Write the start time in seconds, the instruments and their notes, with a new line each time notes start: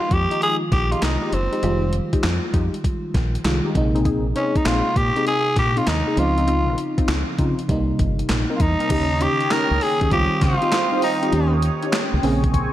Already playing: fm electric piano D#3 F3 G#3 A#3 D#4 F4, tenor saxophone F4
0.11 fingered electric bass F2, tenor saxophone G4, kick, closed hi-hat
0.31 analog polysynth G#3 D#4 G4, closed hi-hat
0.41 analog polysynth G#3 D#4 G4, tenor saxophone G#4, closed hi-hat
0.72 fingered electric bass A#1, tenor saxophone G4, kick, snare, closed hi-hat
0.91 analog polysynth G#3 D#4 G4, tenor saxophone F4, closed hi-hat
1.02 fingered electric bass C2, tenor saxophone D#4, snare, clap, closed hi-hat
1.21 analog polysynth G#3 D#4 G4
1.33 fingered electric bass F#1, tenor saxophone C4, closed hi-hat
1.52 analog polysynth G#3 D#4 G4, closed hi-hat
1.62 fingered electric bass F1, fm electric piano D#3 G3 G#3 F4, analog polysynth G#3 D#4 G4, closed hi-hat
1.93 closed hi-hat
2.13 analog polysynth G#3 D#4 G4, kick, closed hi-hat
2.23 fingered electric bass F2, snare, clap, closed hi-hat
2.53 fingered electric bass F2, analog polysynth G#3 D#4 G4, kick, closed hi-hat
2.74 closed hi-hat
2.84 kick, closed hi-hat
3.14 fingered electric bass A#1, kick, snare, closed hi-hat
3.35 closed hi-hat
3.45 fingered electric bass C2, fm electric piano D#3 G3 G#3 F4, snare, clap, closed hi-hat
3.64 analog polysynth G#3 D#4 G4
3.75 fingered electric bass A#1, fm electric piano C3 G#3 A#3 D#4, kick, closed hi-hat
3.95 analog polysynth C4 D#4 G#4, closed hi-hat
4.05 analog polysynth C4 D#4 G#4, kick, closed hi-hat
4.35 analog polysynth C4 D#4 G#4, tenor saxophone C#4, closed hi-hat
4.56 tenor saxophone D#4, kick, closed hi-hat
4.66 fingered electric bass A#1, analog polysynth C4 D#4 G#4, tenor saxophone F4, snare, clap, closed hi-hat
4.96 fingered electric bass A#2, tenor saxophone G4, kick, closed hi-hat
5.16 analog polysynth C4 D#4 G#4, closed hi-hat
5.26 analog polysynth C4 D#4 G#4, tenor saxophone G#4, closed hi-hat
5.56 fingered electric bass A#2, tenor saxophone G4, kick, snare, closed hi-hat
5.76 analog polysynth C4 D#4 G#4, tenor saxophone F4, closed hi-hat
5.87 fingered electric bass D#2, tenor saxophone D#4, snare, clap, closed hi-hat
6.07 analog polysynth C4 D#4 G#4
6.17 fingered electric bass C#2, fm electric piano C#3 F3 C4 D#4, tenor saxophone F4, closed hi-hat
6.37 analog polysynth C4 D#4 F4, closed hi-hat
6.47 analog polysynth C4 D#4 F4, closed hi-hat
6.78 closed hi-hat
6.98 analog polysynth C4 D#4 F4, kick, closed hi-hat
7.08 fingered electric bass C#2, snare, clap, closed hi-hat
7.38 fingered electric bass C#3, analog polysynth C4 D#4 F4, kick, closed hi-hat
7.59 closed hi-hat
7.68 fingered electric bass C2, fm electric piano C3 G3 A#3 D#4, kick, closed hi-hat
7.99 fingered electric bass G1, kick, closed hi-hat
8.19 closed hi-hat
8.29 fingered electric bass A#1, snare, clap, closed hi-hat
8.50 analog polysynth C4 D#4 A#4
8.56 tenor saxophone F4, kick, closed hi-hat
8.60 fingered electric bass E2, tenor saxophone D#4
8.80 analog polysynth C4 D#4 A#4, closed hi-hat
8.89 fingered electric bass D#2, fm electric piano C#3 D#3 A#3 D#4, analog polysynth C#4 D#4 G4, analog synth pad C#5 G5 D#6, kick, closed hi-hat, crash
9.20 analog polysynth C#4 D#4 G4, tenor saxophone G4, closed hi-hat
9.40 closed hi-hat
9.51 analog polysynth C#4 D#4 G4, tenor saxophone A#4, snare, clap, closed hi-hat
9.71 fingered electric bass C#2
9.81 tenor saxophone G#4, open hi-hat
10.01 fingered electric bass D#2, analog polysynth C#4 D#4 G4, kick, closed hi-hat
10.11 fingered electric bass C#2, fm electric piano D#3 G3 C4 F4, analog polysynth C4 D#4 F4 G4, tenor saxophone G4, analog synth pad C5 F5, kick, closed hi-hat
10.41 fingered electric bass C#3, tenor saxophone F4, kick, snare, closed hi-hat
10.61 analog polysynth C4 D#4 F4 G4, closed hi-hat
10.72 snare, clap, closed hi-hat
10.92 analog polysynth C4 D#4 F4 G4
11.02 tenor saxophone D#4, open hi-hat
11.22 analog polysynth C4 D#4 F4 G4, closed hi-hat
11.32 fingered electric bass D#2, fm electric piano D#3 A#3 C#4 G4, analog polysynth C#4 D#4 G4, analog synth pad C#5, closed hi-hat
11.62 closed hi-hat
11.82 analog polysynth C#4 D#4 G4, closed hi-hat
11.93 snare, clap, closed hi-hat
12.14 fingered electric bass C#2
12.23 fingered electric bass A#1, fm electric piano C#3 A#3 C4 G#4, analog polysynth C4 C#4 G#4, analog synth pad C4 G#5 C#6, open hi-hat
12.44 kick, closed hi-hat
12.54 kick, closed hi-hat